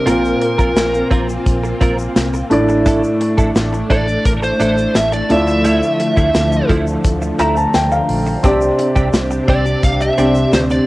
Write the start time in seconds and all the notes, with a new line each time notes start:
Already playing: A#4
0.06 A#1 A#2 A#3 C4 F4 A#4 C5, closed hi-hat, shaker
0.25 shaker
0.41 muted clean electric guitar stroke, closed hi-hat
0.58 A#1 C4 F4 A#4, kick, shaker
0.76 A#1, muted clean electric guitar stroke, snare, closed hi-hat, shaker
0.93 muted clean electric guitar stroke, shaker
1.11 A#1 C4 F4 A#4, kick, closed hi-hat
1.29 shaker
1.46 A#1, kick, closed hi-hat, shaker
1.64 muted clean electric guitar stroke, shaker
1.81 A#1 C4 F4 A#4, kick, closed hi-hat, shaker
1.99 muted clean electric guitar stroke, shaker
2.16 C2, muted clean electric guitar stroke, snare, closed hi-hat, shaker
2.34 muted clean electric guitar stroke, shaker
2.50 A1 A2 A3 D4 E4 D5, closed hi-hat
2.69 muted clean electric guitar stroke, shaker
2.86 D4 E4 A4, kick, closed hi-hat, shaker
3.03 muted clean electric guitar stroke, shaker
3.21 muted clean electric guitar stroke, closed hi-hat
3.38 A1 D4 E4 A4, kick, shaker
3.56 A1, muted clean electric guitar stroke, snare, closed hi-hat, shaker
3.73 muted clean electric guitar stroke, shaker
3.90 A1 D4 E4 A4 D5, kick, closed hi-hat
4.08 muted clean electric guitar stroke, shaker
4.25 A1 A#4, kick, closed hi-hat, shaker
4.43 C5, muted clean electric guitar stroke, shaker
4.60 A1 D4 E4 A4, closed hi-hat, shaker
4.77 muted clean electric guitar stroke, shaker
4.95 A1 E5, muted clean electric guitar stroke, snare, closed hi-hat, shaker
5.12 D5, muted clean electric guitar stroke, shaker
5.29 D2 D3 F3 A3 E4 F4 D5 E5, closed hi-hat
5.47 muted clean electric guitar stroke, shaker
5.64 F3 A3 E4, closed hi-hat, shaker
5.82 muted clean electric guitar stroke, shaker
5.99 muted clean electric guitar stroke, closed hi-hat
6.17 D2 F3 A3 E4, kick, shaker
6.34 D2, muted clean electric guitar stroke, snare, closed hi-hat, shaker
6.52 muted clean electric guitar stroke, shaker
6.69 D2 F3 A3 E4, kick, closed hi-hat
6.87 muted clean electric guitar stroke, shaker
7.04 D2, kick, closed hi-hat, shaker
7.22 muted clean electric guitar stroke, shaker
7.39 D2 F3 A3 E4 A#5, closed hi-hat, shaker
7.56 A5, muted clean electric guitar stroke, shaker
7.74 D2 G5, muted clean electric guitar stroke, snare, closed hi-hat, shaker
7.91 F5, muted clean electric guitar stroke, shaker
8.09 A#1, open hi-hat
8.26 muted clean electric guitar stroke, shaker
8.43 C2 C3 C4 D4 G4 D5, kick, closed hi-hat, shaker
8.61 muted clean electric guitar stroke, shaker
8.78 muted clean electric guitar stroke, closed hi-hat
8.96 C2 C4 D4 G4, kick, shaker
9.13 C2, muted clean electric guitar stroke, snare, closed hi-hat, shaker
9.31 muted clean electric guitar stroke, shaker
9.48 C2 C4 D4 G4 D5, kick, closed hi-hat
9.66 muted clean electric guitar stroke, shaker
9.83 C2 F5, kick, closed hi-hat, shaker
10.01 E5, muted clean electric guitar stroke, shaker
10.18 C2 C4 D4 G4 D5, closed hi-hat, shaker
10.35 muted clean electric guitar stroke, shaker
10.53 D2 C5, muted clean electric guitar stroke, snare, closed hi-hat, shaker
10.70 D5, muted clean electric guitar stroke, shaker